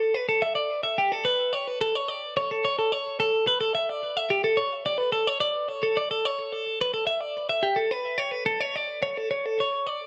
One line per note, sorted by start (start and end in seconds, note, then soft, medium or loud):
0.00 0.14 A4 medium
0.14 0.28 B4 medium
0.29 0.42 A4 medium
0.42 0.55 E5 medium
0.55 0.83 D5 medium
0.83 0.97 E5 medium
0.98 1.12 G4 medium
1.12 1.25 A4 medium
1.25 1.53 B4 medium
1.53 1.68 C#5 medium
1.68 1.81 B4 medium
1.81 1.95 A4 medium
1.95 2.08 C#5 medium
2.08 2.36 D5 medium
2.37 2.50 C#5 medium
2.51 2.64 A4 medium
2.65 2.78 C#5 medium
2.79 2.92 A4 medium
2.92 3.19 C#5 medium
3.20 3.47 A4 medium
3.47 3.60 B4 medium
3.61 3.74 A4 medium
3.75 3.89 E5 medium
3.89 4.17 D5 medium
4.17 4.31 E5 medium
4.30 4.44 G4 medium
4.44 4.58 A4 medium
4.57 4.85 C#5 medium
4.86 4.98 D5 medium
4.98 5.12 B4 medium
5.12 5.27 A4 medium
5.27 5.40 C#5 medium
5.40 5.69 D5 medium
5.69 5.83 C#5 medium
5.83 5.97 A4 medium
5.97 6.11 D5 medium
6.11 6.25 A4 medium
6.25 6.52 C#5 medium
6.52 6.80 A4 medium
6.81 6.93 B4 medium
6.94 7.06 A4 medium
7.07 7.21 E5 medium
7.21 7.49 D5 medium
7.49 7.64 E5 medium
7.63 7.77 G4 medium
7.76 7.91 A4 medium
7.91 8.18 B4 medium
8.18 8.31 C#5 medium
8.31 8.46 B4 medium
8.46 8.61 A4 medium
8.61 8.76 C#5 medium
8.76 9.02 D5 medium
9.03 9.18 C#5 medium
9.18 9.30 A4 medium
9.31 9.46 C#5 medium
9.46 9.59 A4 medium
9.60 9.87 C#5 medium
9.87 10.07 D5 medium